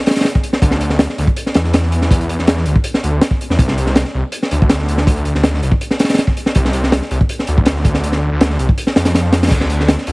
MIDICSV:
0, 0, Header, 1, 3, 480
1, 0, Start_track
1, 0, Tempo, 370370
1, 811, Time_signature, 4, 2, 24, 8
1, 13117, End_track
2, 0, Start_track
2, 0, Title_t, "Detuned saw bass"
2, 0, Program_c, 0, 39
2, 802, Note_on_c, 0, 38, 100
2, 1391, Note_off_c, 0, 38, 0
2, 1528, Note_on_c, 0, 38, 78
2, 1642, Note_off_c, 0, 38, 0
2, 2009, Note_on_c, 0, 40, 88
2, 3075, Note_off_c, 0, 40, 0
2, 3091, Note_on_c, 0, 40, 97
2, 3431, Note_off_c, 0, 40, 0
2, 3449, Note_on_c, 0, 38, 77
2, 3562, Note_off_c, 0, 38, 0
2, 3930, Note_on_c, 0, 38, 84
2, 4147, Note_off_c, 0, 38, 0
2, 4531, Note_on_c, 0, 40, 95
2, 4637, Note_off_c, 0, 40, 0
2, 4648, Note_on_c, 0, 36, 101
2, 5234, Note_off_c, 0, 36, 0
2, 5368, Note_on_c, 0, 36, 82
2, 5482, Note_off_c, 0, 36, 0
2, 5848, Note_on_c, 0, 38, 91
2, 6914, Note_off_c, 0, 38, 0
2, 6931, Note_on_c, 0, 38, 99
2, 7271, Note_off_c, 0, 38, 0
2, 7290, Note_on_c, 0, 36, 77
2, 7403, Note_off_c, 0, 36, 0
2, 8495, Note_on_c, 0, 36, 104
2, 9078, Note_off_c, 0, 36, 0
2, 9209, Note_on_c, 0, 36, 82
2, 9322, Note_off_c, 0, 36, 0
2, 9692, Note_on_c, 0, 38, 90
2, 10756, Note_off_c, 0, 38, 0
2, 10776, Note_on_c, 0, 38, 100
2, 11113, Note_off_c, 0, 38, 0
2, 11130, Note_on_c, 0, 36, 77
2, 11242, Note_off_c, 0, 36, 0
2, 11610, Note_on_c, 0, 41, 93
2, 12312, Note_off_c, 0, 41, 0
2, 12327, Note_on_c, 0, 38, 108
2, 12913, Note_off_c, 0, 38, 0
2, 13050, Note_on_c, 0, 38, 79
2, 13117, Note_off_c, 0, 38, 0
2, 13117, End_track
3, 0, Start_track
3, 0, Title_t, "Drums"
3, 80, Note_on_c, 9, 42, 72
3, 90, Note_on_c, 9, 38, 81
3, 137, Note_off_c, 9, 38, 0
3, 137, Note_on_c, 9, 38, 91
3, 145, Note_off_c, 9, 42, 0
3, 145, Note_on_c, 9, 42, 66
3, 203, Note_off_c, 9, 42, 0
3, 203, Note_on_c, 9, 42, 69
3, 212, Note_off_c, 9, 38, 0
3, 212, Note_on_c, 9, 38, 90
3, 262, Note_off_c, 9, 42, 0
3, 262, Note_on_c, 9, 42, 74
3, 269, Note_off_c, 9, 38, 0
3, 269, Note_on_c, 9, 38, 96
3, 319, Note_off_c, 9, 38, 0
3, 319, Note_on_c, 9, 38, 118
3, 336, Note_off_c, 9, 42, 0
3, 336, Note_on_c, 9, 42, 86
3, 449, Note_off_c, 9, 38, 0
3, 456, Note_on_c, 9, 36, 87
3, 465, Note_off_c, 9, 42, 0
3, 564, Note_on_c, 9, 42, 65
3, 585, Note_off_c, 9, 36, 0
3, 685, Note_on_c, 9, 38, 58
3, 693, Note_off_c, 9, 42, 0
3, 802, Note_on_c, 9, 36, 121
3, 807, Note_on_c, 9, 42, 90
3, 815, Note_off_c, 9, 38, 0
3, 918, Note_on_c, 9, 38, 65
3, 932, Note_off_c, 9, 36, 0
3, 937, Note_off_c, 9, 42, 0
3, 1046, Note_on_c, 9, 42, 74
3, 1048, Note_off_c, 9, 38, 0
3, 1164, Note_on_c, 9, 38, 40
3, 1175, Note_off_c, 9, 42, 0
3, 1283, Note_off_c, 9, 38, 0
3, 1283, Note_on_c, 9, 38, 127
3, 1291, Note_on_c, 9, 42, 88
3, 1413, Note_off_c, 9, 38, 0
3, 1418, Note_on_c, 9, 38, 56
3, 1421, Note_off_c, 9, 42, 0
3, 1533, Note_on_c, 9, 42, 72
3, 1547, Note_off_c, 9, 38, 0
3, 1650, Note_on_c, 9, 36, 88
3, 1662, Note_off_c, 9, 42, 0
3, 1768, Note_on_c, 9, 42, 95
3, 1779, Note_off_c, 9, 36, 0
3, 1895, Note_on_c, 9, 38, 42
3, 1898, Note_off_c, 9, 42, 0
3, 2000, Note_on_c, 9, 42, 84
3, 2011, Note_off_c, 9, 38, 0
3, 2011, Note_on_c, 9, 38, 104
3, 2126, Note_off_c, 9, 38, 0
3, 2126, Note_on_c, 9, 38, 52
3, 2129, Note_off_c, 9, 42, 0
3, 2248, Note_on_c, 9, 42, 93
3, 2255, Note_off_c, 9, 38, 0
3, 2255, Note_on_c, 9, 38, 113
3, 2372, Note_off_c, 9, 38, 0
3, 2372, Note_on_c, 9, 38, 42
3, 2378, Note_off_c, 9, 42, 0
3, 2489, Note_on_c, 9, 42, 65
3, 2501, Note_off_c, 9, 38, 0
3, 2614, Note_on_c, 9, 38, 44
3, 2619, Note_off_c, 9, 42, 0
3, 2731, Note_on_c, 9, 36, 118
3, 2739, Note_on_c, 9, 42, 88
3, 2743, Note_off_c, 9, 38, 0
3, 2860, Note_off_c, 9, 36, 0
3, 2862, Note_off_c, 9, 42, 0
3, 2862, Note_on_c, 9, 42, 41
3, 2974, Note_off_c, 9, 42, 0
3, 2974, Note_on_c, 9, 42, 73
3, 3095, Note_on_c, 9, 38, 36
3, 3104, Note_off_c, 9, 42, 0
3, 3207, Note_on_c, 9, 42, 89
3, 3212, Note_off_c, 9, 38, 0
3, 3212, Note_on_c, 9, 38, 127
3, 3327, Note_off_c, 9, 38, 0
3, 3327, Note_on_c, 9, 38, 50
3, 3336, Note_off_c, 9, 42, 0
3, 3442, Note_on_c, 9, 42, 65
3, 3457, Note_off_c, 9, 38, 0
3, 3571, Note_on_c, 9, 36, 95
3, 3572, Note_off_c, 9, 42, 0
3, 3679, Note_on_c, 9, 42, 98
3, 3701, Note_off_c, 9, 36, 0
3, 3809, Note_off_c, 9, 42, 0
3, 3811, Note_on_c, 9, 38, 58
3, 3936, Note_on_c, 9, 42, 64
3, 3941, Note_off_c, 9, 38, 0
3, 4066, Note_off_c, 9, 42, 0
3, 4165, Note_on_c, 9, 38, 120
3, 4166, Note_on_c, 9, 42, 96
3, 4285, Note_on_c, 9, 36, 94
3, 4294, Note_off_c, 9, 38, 0
3, 4295, Note_off_c, 9, 42, 0
3, 4415, Note_off_c, 9, 36, 0
3, 4418, Note_on_c, 9, 42, 69
3, 4543, Note_on_c, 9, 38, 52
3, 4548, Note_off_c, 9, 42, 0
3, 4649, Note_on_c, 9, 36, 125
3, 4650, Note_on_c, 9, 42, 92
3, 4673, Note_off_c, 9, 38, 0
3, 4768, Note_on_c, 9, 38, 56
3, 4779, Note_off_c, 9, 36, 0
3, 4779, Note_off_c, 9, 42, 0
3, 4896, Note_on_c, 9, 42, 69
3, 4898, Note_off_c, 9, 38, 0
3, 5009, Note_on_c, 9, 38, 37
3, 5026, Note_off_c, 9, 42, 0
3, 5127, Note_on_c, 9, 42, 90
3, 5129, Note_off_c, 9, 38, 0
3, 5129, Note_on_c, 9, 38, 112
3, 5243, Note_off_c, 9, 38, 0
3, 5243, Note_on_c, 9, 38, 49
3, 5256, Note_off_c, 9, 42, 0
3, 5373, Note_off_c, 9, 38, 0
3, 5599, Note_on_c, 9, 42, 81
3, 5729, Note_off_c, 9, 42, 0
3, 5735, Note_on_c, 9, 38, 42
3, 5847, Note_on_c, 9, 42, 72
3, 5864, Note_off_c, 9, 38, 0
3, 5977, Note_off_c, 9, 42, 0
3, 5986, Note_on_c, 9, 36, 91
3, 6084, Note_on_c, 9, 38, 121
3, 6084, Note_on_c, 9, 42, 90
3, 6116, Note_off_c, 9, 36, 0
3, 6207, Note_off_c, 9, 38, 0
3, 6207, Note_on_c, 9, 38, 42
3, 6214, Note_off_c, 9, 42, 0
3, 6330, Note_on_c, 9, 42, 67
3, 6337, Note_off_c, 9, 38, 0
3, 6446, Note_on_c, 9, 38, 45
3, 6460, Note_off_c, 9, 42, 0
3, 6570, Note_on_c, 9, 36, 127
3, 6576, Note_off_c, 9, 38, 0
3, 6576, Note_on_c, 9, 42, 104
3, 6689, Note_off_c, 9, 42, 0
3, 6689, Note_on_c, 9, 42, 43
3, 6700, Note_off_c, 9, 36, 0
3, 6805, Note_off_c, 9, 42, 0
3, 6805, Note_on_c, 9, 42, 63
3, 6932, Note_on_c, 9, 38, 35
3, 6935, Note_off_c, 9, 42, 0
3, 7044, Note_off_c, 9, 38, 0
3, 7044, Note_on_c, 9, 38, 121
3, 7047, Note_on_c, 9, 42, 81
3, 7173, Note_off_c, 9, 38, 0
3, 7176, Note_off_c, 9, 42, 0
3, 7179, Note_on_c, 9, 38, 53
3, 7294, Note_on_c, 9, 42, 68
3, 7309, Note_off_c, 9, 38, 0
3, 7408, Note_on_c, 9, 36, 93
3, 7423, Note_off_c, 9, 42, 0
3, 7531, Note_on_c, 9, 42, 88
3, 7538, Note_off_c, 9, 36, 0
3, 7654, Note_on_c, 9, 38, 54
3, 7661, Note_off_c, 9, 42, 0
3, 7768, Note_on_c, 9, 42, 68
3, 7775, Note_off_c, 9, 38, 0
3, 7775, Note_on_c, 9, 38, 80
3, 7830, Note_off_c, 9, 38, 0
3, 7830, Note_on_c, 9, 38, 90
3, 7840, Note_off_c, 9, 42, 0
3, 7840, Note_on_c, 9, 42, 72
3, 7899, Note_off_c, 9, 38, 0
3, 7899, Note_on_c, 9, 38, 84
3, 7900, Note_off_c, 9, 42, 0
3, 7900, Note_on_c, 9, 42, 70
3, 7959, Note_off_c, 9, 42, 0
3, 7959, Note_on_c, 9, 42, 73
3, 7961, Note_off_c, 9, 38, 0
3, 7961, Note_on_c, 9, 38, 90
3, 8008, Note_off_c, 9, 42, 0
3, 8008, Note_on_c, 9, 42, 91
3, 8014, Note_off_c, 9, 38, 0
3, 8014, Note_on_c, 9, 38, 120
3, 8130, Note_on_c, 9, 36, 89
3, 8138, Note_off_c, 9, 42, 0
3, 8143, Note_off_c, 9, 38, 0
3, 8254, Note_on_c, 9, 42, 65
3, 8259, Note_off_c, 9, 36, 0
3, 8372, Note_on_c, 9, 38, 58
3, 8384, Note_off_c, 9, 42, 0
3, 8485, Note_on_c, 9, 42, 88
3, 8496, Note_on_c, 9, 36, 107
3, 8502, Note_off_c, 9, 38, 0
3, 8615, Note_off_c, 9, 42, 0
3, 8617, Note_on_c, 9, 38, 56
3, 8625, Note_off_c, 9, 36, 0
3, 8723, Note_on_c, 9, 42, 77
3, 8746, Note_off_c, 9, 38, 0
3, 8853, Note_off_c, 9, 42, 0
3, 8856, Note_on_c, 9, 38, 41
3, 8970, Note_off_c, 9, 38, 0
3, 8970, Note_on_c, 9, 38, 127
3, 8975, Note_on_c, 9, 42, 91
3, 9095, Note_off_c, 9, 38, 0
3, 9095, Note_on_c, 9, 38, 59
3, 9104, Note_off_c, 9, 42, 0
3, 9212, Note_on_c, 9, 42, 72
3, 9225, Note_off_c, 9, 38, 0
3, 9341, Note_off_c, 9, 42, 0
3, 9341, Note_on_c, 9, 36, 96
3, 9451, Note_on_c, 9, 42, 88
3, 9471, Note_off_c, 9, 36, 0
3, 9580, Note_on_c, 9, 38, 44
3, 9581, Note_off_c, 9, 42, 0
3, 9683, Note_on_c, 9, 42, 66
3, 9709, Note_off_c, 9, 38, 0
3, 9813, Note_off_c, 9, 42, 0
3, 9820, Note_on_c, 9, 36, 93
3, 9922, Note_on_c, 9, 42, 98
3, 9933, Note_on_c, 9, 38, 127
3, 9950, Note_off_c, 9, 36, 0
3, 10052, Note_off_c, 9, 42, 0
3, 10060, Note_off_c, 9, 38, 0
3, 10060, Note_on_c, 9, 38, 36
3, 10170, Note_on_c, 9, 42, 73
3, 10171, Note_on_c, 9, 36, 101
3, 10189, Note_off_c, 9, 38, 0
3, 10292, Note_on_c, 9, 38, 56
3, 10299, Note_off_c, 9, 42, 0
3, 10301, Note_off_c, 9, 36, 0
3, 10415, Note_on_c, 9, 42, 69
3, 10421, Note_off_c, 9, 38, 0
3, 10524, Note_on_c, 9, 38, 38
3, 10545, Note_off_c, 9, 42, 0
3, 10654, Note_off_c, 9, 38, 0
3, 10894, Note_on_c, 9, 42, 83
3, 10901, Note_on_c, 9, 38, 125
3, 11016, Note_off_c, 9, 38, 0
3, 11016, Note_on_c, 9, 38, 49
3, 11023, Note_off_c, 9, 42, 0
3, 11135, Note_on_c, 9, 42, 69
3, 11146, Note_off_c, 9, 38, 0
3, 11261, Note_on_c, 9, 36, 93
3, 11265, Note_off_c, 9, 42, 0
3, 11375, Note_on_c, 9, 42, 89
3, 11390, Note_off_c, 9, 36, 0
3, 11492, Note_on_c, 9, 38, 56
3, 11504, Note_off_c, 9, 42, 0
3, 11611, Note_off_c, 9, 38, 0
3, 11611, Note_on_c, 9, 38, 102
3, 11619, Note_on_c, 9, 42, 78
3, 11730, Note_off_c, 9, 38, 0
3, 11730, Note_on_c, 9, 38, 108
3, 11732, Note_off_c, 9, 42, 0
3, 11732, Note_on_c, 9, 42, 80
3, 11852, Note_off_c, 9, 38, 0
3, 11852, Note_on_c, 9, 38, 106
3, 11862, Note_off_c, 9, 42, 0
3, 11865, Note_on_c, 9, 42, 90
3, 11982, Note_off_c, 9, 38, 0
3, 11982, Note_on_c, 9, 38, 34
3, 11994, Note_off_c, 9, 42, 0
3, 12085, Note_off_c, 9, 38, 0
3, 12085, Note_on_c, 9, 38, 104
3, 12088, Note_on_c, 9, 42, 78
3, 12215, Note_off_c, 9, 38, 0
3, 12217, Note_off_c, 9, 42, 0
3, 12219, Note_on_c, 9, 38, 95
3, 12221, Note_on_c, 9, 42, 74
3, 12275, Note_off_c, 9, 42, 0
3, 12275, Note_on_c, 9, 42, 71
3, 12283, Note_off_c, 9, 38, 0
3, 12283, Note_on_c, 9, 38, 101
3, 12323, Note_off_c, 9, 42, 0
3, 12323, Note_on_c, 9, 42, 98
3, 12328, Note_on_c, 9, 36, 106
3, 12335, Note_on_c, 9, 49, 86
3, 12412, Note_off_c, 9, 38, 0
3, 12450, Note_on_c, 9, 38, 61
3, 12452, Note_off_c, 9, 42, 0
3, 12458, Note_off_c, 9, 36, 0
3, 12465, Note_off_c, 9, 49, 0
3, 12569, Note_on_c, 9, 42, 65
3, 12580, Note_off_c, 9, 38, 0
3, 12698, Note_off_c, 9, 42, 0
3, 12703, Note_on_c, 9, 38, 39
3, 12810, Note_off_c, 9, 38, 0
3, 12810, Note_on_c, 9, 38, 117
3, 12811, Note_on_c, 9, 42, 86
3, 12933, Note_off_c, 9, 38, 0
3, 12933, Note_on_c, 9, 38, 56
3, 12941, Note_off_c, 9, 42, 0
3, 13049, Note_on_c, 9, 42, 72
3, 13063, Note_off_c, 9, 38, 0
3, 13117, Note_off_c, 9, 42, 0
3, 13117, End_track
0, 0, End_of_file